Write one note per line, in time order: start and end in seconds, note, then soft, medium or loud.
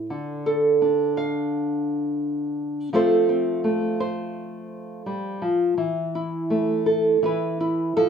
0.00 0.10 A2 medium
0.00 0.46 A4 soft
0.10 2.92 D3 medium
0.46 2.94 A4 soft
0.82 2.90 D4 soft
1.17 2.90 F5 medium
2.93 5.41 F3 medium
2.93 3.63 A3 medium
2.93 3.28 C4 medium
2.93 5.74 A4 medium
2.93 3.99 C5 medium
3.29 5.78 C4 soft
3.64 5.06 A3 medium
4.00 5.74 C5 medium
5.06 5.42 G3 medium
5.42 5.77 F3 medium
5.78 7.17 E3 medium
6.15 7.18 E4 soft
6.50 7.18 A3 soft
6.86 7.22 A4 soft
7.23 7.96 E3 medium
7.23 7.59 E4 medium
7.23 7.96 B4 medium
7.61 8.09 E4 soft
7.97 8.09 F3 soft
7.97 8.09 A4 medium